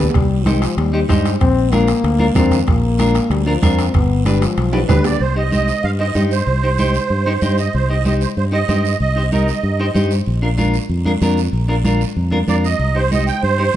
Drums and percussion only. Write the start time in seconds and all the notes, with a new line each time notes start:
0.04 low conga
0.10 low timbale
0.14 bombo low, bombo rim, high timbale, long guiro
0.46 bombo rim, high conga, high timbale, short guiro
0.62 bombo rim, high timbale, short guiro
0.78 bombo rim, high timbale, long guiro
1.09 bombo low, bombo rim, high conga, high timbale, short guiro
1.25 bombo rim, high timbale, short guiro
1.41 bombo low, bombo rim, high timbale, long guiro
1.72 bombo rim, high conga, high timbale, short guiro
1.88 bombo rim, high timbale, short guiro
2.04 bombo rim, high timbale, long guiro
2.19 high conga
2.35 bombo low, bombo rim, high conga, low conga, high timbale, low timbale, short guiro
2.51 bombo rim, low conga, high timbale, short guiro
2.67 bombo low, bombo rim, high timbale, long guiro
2.99 bombo rim, high conga, high timbale, short guiro
3.15 bombo rim, high timbale, short guiro
3.31 bombo rim, high timbale, long guiro
3.62 bombo low, bombo rim, high conga, high timbale, short guiro
3.79 bombo rim, high timbale, short guiro
3.94 bombo low, bombo rim, high timbale, long guiro
4.26 bombo rim, high conga, high timbale, short guiro
4.42 bombo rim, high timbale, short guiro
4.58 bombo rim, high timbale, long guiro
4.73 high timbale
4.89 bombo low, bombo rim, high conga, low conga, high timbale, short guiro
5.04 bombo rim, low timbale, short guiro
5.20 long guiro
5.52 high conga, short guiro
5.68 short guiro
5.83 long guiro
6.15 high conga, short guiro
6.31 short guiro
6.47 long guiro
6.78 high conga, short guiro
6.94 short guiro
7.10 long guiro
7.42 high conga, short guiro
7.58 short guiro
7.73 long guiro
8.05 high conga, short guiro
8.21 short guiro
8.37 long guiro
8.69 high conga, short guiro
8.85 short guiro
9.00 long guiro
9.32 high conga, short guiro
9.48 short guiro
9.64 long guiro
9.95 high conga, short guiro
10.11 short guiro
10.26 long guiro
10.58 high conga, short guiro
10.74 short guiro
10.90 long guiro
11.06 high conga
11.22 high conga, short guiro
11.37 short guiro
11.54 long guiro
11.84 high conga, short guiro
12.01 short guiro
12.17 long guiro
12.32 high conga
12.48 high conga, short guiro
12.64 short guiro
12.80 long guiro
13.11 high conga, short guiro
13.27 short guiro
13.43 long guiro